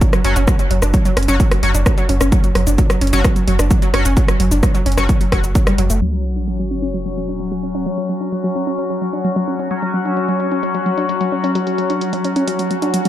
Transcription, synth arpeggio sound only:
0.01 0.05 F#3 medium
0.13 0.16 F#3 loud
0.25 0.33 C#4 medium
0.36 0.44 C#4 loud
0.48 0.51 F#3 loud
0.59 0.62 F#3 medium
0.71 0.79 F#3 medium
0.82 0.85 D4 medium
0.94 0.97 F#3 medium
1.05 1.09 F#3 loud
1.17 1.25 C#4 medium
1.28 1.36 C#4 loud
1.40 1.43 F#3 loud
1.51 1.55 F#3 medium
1.63 1.71 F#3 medium
1.75 1.78 D4 medium
1.86 1.89 F#3 medium
1.98 2.01 F#3 loud
2.09 2.17 C#4 medium
2.21 2.29 C#4 loud
2.32 2.35 F#3 loud
2.44 2.47 F#3 medium
2.55 2.63 F#3 medium
2.67 2.70 D4 medium
2.78 2.82 F#3 medium
2.90 2.93 F#3 loud
3.01 3.10 C#4 medium
3.13 3.21 C#4 loud
3.24 3.28 F#3 loud
3.36 3.39 F#3 medium
3.48 3.56 F#3 medium
3.59 3.62 D4 medium
3.71 3.74 F#3 medium
3.82 3.85 F#3 loud
3.94 4.02 C#4 medium
4.05 4.13 C#4 loud
4.17 4.20 F#3 loud
4.28 4.32 F#3 medium
4.40 4.48 F#3 medium
4.51 4.55 D4 medium
4.63 4.66 F#3 medium
4.75 4.78 F#3 loud
4.86 4.94 C#4 medium
4.98 5.06 C#4 loud
5.09 5.12 F#3 loud
5.21 5.24 F#3 medium
5.32 5.38 F#3 loud
5.44 5.47 F#3 medium
5.55 5.61 F#3 medium
5.67 5.72 G3 loud
5.78 5.82 F#3 loud
5.90 5.95 A3 medium
6.01 6.05 F#3 medium
6.13 6.16 F#3 medium
6.25 6.33 F#3 medium
6.36 6.39 D4 medium
6.48 6.51 F#3 medium
6.59 6.62 F#3 loud
6.71 6.79 C#4 medium
6.82 6.90 C#4 loud
6.94 6.97 F#3 loud
7.05 7.09 F#3 medium
7.17 7.25 F#3 medium
7.28 7.32 D4 medium
7.40 7.43 F#3 medium
7.52 7.55 F#3 loud
7.63 7.71 C#4 medium
7.75 7.83 C#4 loud
7.86 7.89 F#3 loud
7.98 8.01 F#3 medium
8.09 8.17 F#3 medium
8.21 8.24 D4 medium
8.32 8.35 F#3 medium
8.44 8.47 F#3 loud
8.55 8.63 C#4 medium
8.67 8.75 C#4 loud
8.78 8.82 F#3 loud
8.90 8.93 F#3 medium
9.01 9.10 F#3 medium
9.13 9.16 D4 medium
9.25 9.28 F#3 medium
9.36 9.39 F#3 loud
9.48 9.56 C#4 medium
9.59 9.67 C#4 loud
9.71 9.74 F#3 loud
9.82 9.86 F#3 medium
9.94 10.02 F#3 medium
10.05 10.09 D4 medium
10.17 10.20 F#3 medium
10.28 10.32 F#3 loud
10.40 10.48 C#4 medium
10.51 10.60 C#4 loud
10.63 10.66 F#3 loud
10.75 10.78 F#3 medium
10.86 10.94 F#3 medium
10.98 11.01 D4 medium
11.09 11.12 F#3 medium
11.21 11.24 F#3 loud
11.32 11.40 C#4 medium
11.44 11.52 C#4 medium
11.55 11.59 F#3 loud
11.67 11.70 F#3 medium
11.78 11.86 F#3 medium
11.90 11.93 D4 medium
12.01 12.05 F#3 medium
12.13 12.16 F#3 loud
12.25 12.33 C#4 medium
12.36 12.44 C#4 loud
12.48 12.51 F#3 loud
12.59 12.62 F#3 medium
12.71 12.79 F#3 medium
12.82 12.85 D4 medium
12.94 12.97 F#3 medium
13.05 13.09 F#3 loud

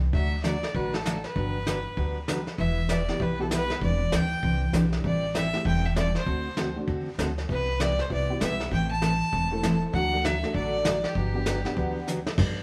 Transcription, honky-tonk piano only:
3.09 3.19 G3 medium
3.09 3.19 B3 medium
3.09 3.19 E4 medium
3.09 3.19 G4 medium
3.39 3.79 G3 medium
3.39 3.79 B3 medium
3.39 3.79 E4 medium
3.39 3.80 G4 medium
4.73 5.04 C4 medium
4.73 5.04 D4 medium
4.73 5.04 E4 medium
4.73 5.05 G4 medium
5.53 5.64 A3 medium
5.53 5.64 C4 medium
5.53 5.64 E4 medium
5.53 5.64 G4 medium
6.76 6.86 A3 medium
6.76 6.87 C4 medium
6.76 6.87 D4 medium
6.76 6.87 F#4 medium
8.30 8.69 B3 medium
8.30 8.69 C4 medium
8.30 8.70 E4 medium
8.30 8.69 G4 medium
9.51 9.91 A3 medium
9.51 9.91 C4 medium
9.51 9.92 E4 medium
9.51 9.92 A4 medium
10.12 10.23 A3 medium
10.12 10.23 D4 medium
10.12 10.23 F#4 medium
10.12 10.23 A4 medium
10.43 10.83 A3 medium
10.43 10.83 D4 medium
10.43 10.83 F#4 medium
10.43 10.83 A4 medium
11.34 11.45 B3 medium
11.34 11.45 D4 medium
11.34 11.45 F#4 medium
11.34 11.45 G4 medium
11.65 12.05 B3 medium
11.65 12.05 D4 medium
11.65 12.05 G4 medium
11.65 12.05 F#5 medium

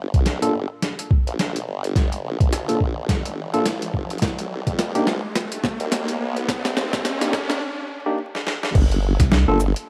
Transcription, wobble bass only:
0.00 0.11 G1 medium
0.14 0.40 C2 loud
0.42 0.68 G1 loud
1.27 1.65 A#1 loud
1.67 2.22 G1 loud
2.24 3.07 A#1 medium
3.09 3.51 G1 loud
3.53 3.92 A#1 loud
3.94 4.20 G1 loud
4.22 4.64 C2 medium
4.67 4.92 F2 loud
4.95 5.21 C2 loud
5.80 6.18 D#2 loud
6.20 6.75 C2 medium
6.77 7.60 D#2 loud
8.75 9.17 G1 loud
9.48 9.74 G1 loud

